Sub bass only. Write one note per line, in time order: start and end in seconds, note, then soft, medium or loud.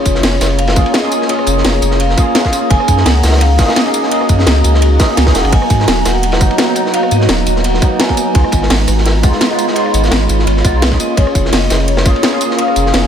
0.06 0.22 F1 medium
0.23 0.39 F1 medium
0.41 0.78 F1 loud
0.76 0.85 A#1 medium
1.47 1.63 F1 medium
1.65 1.81 F1 medium
1.82 2.16 F1 loud
2.70 2.79 F#1 loud
2.88 3.04 F#2 medium
3.06 3.22 C#2 medium
3.23 3.60 C#2 loud
3.59 3.67 F#1 medium
4.29 4.45 F#2 medium
4.47 4.63 C#2 medium
4.64 4.98 C#2 loud
5.17 5.33 C#2 medium
5.35 5.44 D#1 medium
5.44 5.52 F#1 medium
5.53 5.61 G#1 loud
5.70 5.86 G#2 medium
5.88 6.04 D#1 medium
6.06 6.42 D#1 loud
6.41 6.50 G#1 medium
7.12 7.28 G#2 medium
7.29 7.45 D#1 medium
7.47 7.81 D#1 loud
8.35 8.44 C#2 loud
8.53 8.69 G#1 medium
8.70 8.87 G#1 medium
8.88 9.25 G#1 loud
9.23 9.32 C#2 medium
9.94 10.10 G#1 medium
10.12 10.28 G#1 medium
10.29 10.46 G#1 loud
10.47 10.63 G#1 loud
10.65 10.99 B1 loud
11.17 11.26 A#1 loud
11.35 11.51 F1 medium
11.53 11.69 F1 medium
11.71 12.07 F1 loud
12.06 12.14 A#1 medium
12.76 12.92 F1 medium
12.94 13.07 F1 medium